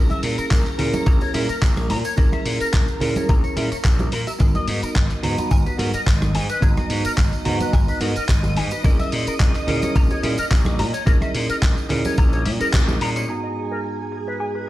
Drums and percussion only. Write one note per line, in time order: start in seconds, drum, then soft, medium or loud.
0.10 closed hi-hat soft
0.10 tambourine soft
0.10 high conga medium
0.23 open hi-hat loud
0.38 closed hi-hat soft
0.38 tambourine medium
0.51 kick loud
0.51 clap loud
0.51 closed hi-hat soft
0.51 tambourine medium
0.51 high conga medium
0.66 clap soft
0.66 closed hi-hat soft
0.66 tambourine soft
0.79 open hi-hat medium
0.79 low conga medium
0.93 closed hi-hat soft
0.93 tambourine medium
0.93 high bongo soft
0.93 high conga medium
1.06 kick loud
1.06 closed hi-hat soft
1.06 tambourine medium
1.21 closed hi-hat soft
1.21 tambourine soft
1.21 high bongo medium
1.34 open hi-hat loud
1.34 high bongo medium
1.34 high conga medium
1.49 closed hi-hat soft
1.49 tambourine medium
1.62 kick loud
1.62 clap loud
1.62 closed hi-hat soft
1.62 tambourine medium
1.76 cross-stick medium
1.76 closed hi-hat soft
1.76 tambourine soft
1.76 high conga medium
1.90 open hi-hat loud
1.90 high bongo medium
2.05 closed hi-hat soft
2.05 tambourine medium
2.17 kick loud
2.17 closed hi-hat soft
2.17 tambourine medium
2.32 cross-stick medium
2.32 closed hi-hat soft
2.32 tambourine soft
2.32 high conga medium
2.46 open hi-hat loud
2.61 closed hi-hat soft
2.61 tambourine medium
2.73 kick loud
2.73 clap loud
2.73 closed hi-hat soft
2.73 tambourine medium
2.73 high conga medium
2.88 closed hi-hat soft
2.88 tambourine soft
3.00 open hi-hat medium
3.00 low conga medium
3.16 closed hi-hat soft
3.16 tambourine medium
3.16 high bongo soft
3.16 high conga medium
3.29 kick loud
3.29 closed hi-hat soft
3.29 tambourine medium
3.44 closed hi-hat soft
3.44 tambourine soft
3.56 open hi-hat loud
3.56 high conga medium
3.72 closed hi-hat soft
3.72 tambourine medium
3.84 kick loud
3.84 clap loud
3.84 closed hi-hat soft
3.84 tambourine medium
3.84 high bongo soft
3.99 closed hi-hat soft
3.99 tambourine soft
3.99 high bongo medium
3.99 high conga medium
4.12 open hi-hat medium
4.27 closed hi-hat soft
4.27 tambourine medium
4.27 high bongo soft
4.39 kick loud
4.39 closed hi-hat medium
4.39 tambourine medium
4.55 closed hi-hat soft
4.55 tambourine soft
4.55 high conga medium
4.68 open hi-hat loud
4.83 closed hi-hat soft
4.83 tambourine medium
4.95 kick loud
4.95 clap loud
4.95 closed hi-hat soft
4.95 tambourine medium
4.95 high conga medium
5.10 clap soft
5.10 closed hi-hat soft
5.10 tambourine soft
5.23 open hi-hat medium
5.23 low conga medium
5.38 closed hi-hat soft
5.38 tambourine medium
5.38 high bongo soft
5.38 high conga medium
5.51 kick loud
5.51 closed hi-hat soft
5.51 tambourine medium
5.66 closed hi-hat soft
5.66 tambourine soft
5.66 high bongo medium
5.79 open hi-hat loud
5.79 high bongo soft
5.79 high conga medium
5.94 closed hi-hat soft
5.94 tambourine medium
6.07 kick loud
6.07 clap loud
6.07 closed hi-hat soft
6.07 tambourine medium
6.22 cross-stick medium
6.22 closed hi-hat soft
6.22 tambourine soft
6.22 high conga medium
6.35 open hi-hat medium
6.35 high bongo medium
6.49 closed hi-hat soft
6.49 tambourine medium
6.62 kick loud
6.62 closed hi-hat medium
6.62 tambourine medium
6.77 cross-stick medium
6.77 closed hi-hat soft
6.77 tambourine soft
6.77 high conga medium
6.90 open hi-hat loud
7.05 closed hi-hat soft
7.05 tambourine medium
7.18 kick loud
7.18 clap loud
7.18 closed hi-hat soft
7.18 tambourine medium
7.18 high conga medium
7.33 closed hi-hat soft
7.33 tambourine soft
7.45 open hi-hat medium
7.45 low conga medium
7.60 closed hi-hat soft
7.60 tambourine medium
7.60 high bongo soft
7.60 high conga medium
7.73 kick loud
7.73 closed hi-hat medium
7.73 tambourine medium
7.88 closed hi-hat soft
7.88 tambourine soft
8.00 open hi-hat medium
8.00 high conga medium
8.16 closed hi-hat medium
8.16 tambourine medium
8.29 kick loud
8.29 clap loud
8.29 closed hi-hat soft
8.29 tambourine medium
8.29 high bongo soft
8.43 closed hi-hat soft
8.43 tambourine soft
8.43 high bongo medium
8.43 high conga medium
8.57 open hi-hat medium
8.71 closed hi-hat soft
8.71 tambourine medium
8.71 high bongo medium
8.84 kick loud
8.84 closed hi-hat medium
8.84 tambourine medium
8.99 closed hi-hat soft
8.99 tambourine soft
8.99 high conga medium
9.12 open hi-hat loud
9.27 closed hi-hat medium
9.27 tambourine medium
9.39 kick loud
9.39 clap loud
9.39 closed hi-hat medium
9.39 tambourine medium
9.39 high conga medium
9.55 clap soft
9.55 closed hi-hat soft
9.55 tambourine soft
9.67 open hi-hat medium
9.67 low conga medium
9.82 closed hi-hat medium
9.82 tambourine medium
9.82 high bongo medium
9.82 high conga medium
9.95 kick loud
9.95 closed hi-hat medium
9.95 tambourine medium
10.10 closed hi-hat soft
10.10 tambourine soft
10.10 high bongo medium
10.23 open hi-hat loud
10.23 high bongo medium
10.23 high conga medium
10.38 closed hi-hat medium
10.38 tambourine medium
10.51 kick loud
10.51 clap loud
10.51 closed hi-hat medium
10.51 tambourine medium
10.65 cross-stick medium
10.65 closed hi-hat soft
10.65 tambourine soft
10.65 high conga medium
10.79 open hi-hat medium
10.79 high bongo medium
10.94 closed hi-hat medium
10.94 tambourine medium
11.07 kick loud
11.07 closed hi-hat medium
11.07 tambourine medium
11.21 cross-stick medium
11.21 closed hi-hat soft
11.21 tambourine soft
11.21 high conga medium
11.35 open hi-hat loud
11.50 closed hi-hat medium
11.50 tambourine medium
11.62 kick loud
11.62 clap loud
11.62 closed hi-hat medium
11.62 tambourine medium
11.62 high conga medium
11.77 closed hi-hat soft
11.77 tambourine soft
11.90 clap soft
11.90 open hi-hat medium
11.90 low conga medium
12.05 closed hi-hat medium
12.05 tambourine medium
12.05 high bongo soft
12.05 high conga medium
12.17 kick loud
12.17 closed hi-hat medium
12.17 tambourine medium
12.33 closed hi-hat soft
12.33 tambourine soft
12.46 open hi-hat loud
12.46 high conga medium
12.61 closed hi-hat medium
12.61 tambourine medium
12.73 kick loud
12.73 clap loud
12.73 closed hi-hat medium
12.73 tambourine medium
12.73 high bongo medium
12.88 closed hi-hat soft
12.88 tambourine soft
12.88 high bongo medium
12.88 high conga medium
13.01 open hi-hat medium
13.16 closed hi-hat medium
13.16 tambourine medium
13.16 high bongo medium
13.29 closed hi-hat soft
13.56 closed hi-hat medium
13.71 closed hi-hat soft
13.84 closed hi-hat soft
13.99 closed hi-hat soft
14.12 closed hi-hat medium
14.27 closed hi-hat soft
14.40 closed hi-hat soft
14.55 closed hi-hat soft